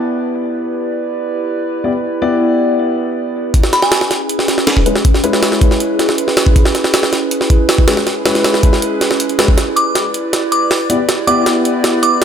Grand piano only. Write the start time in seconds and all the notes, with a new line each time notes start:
Already playing: B3 E4 G4 D5
1.84 B3 E4 G4 D5
2.22 B3 E4 G4 D5
4.86 G#3 C#4 E4 B4
5.24 G#3 C#4 E4 B4
7.88 G#3 C#4 E4 B4
8.26 G#3 C#4 E4 B4
9.39 G#3 C#4 E4 B4
10.90 B3 E4 G4 D5
11.27 B3 E4 G4 D5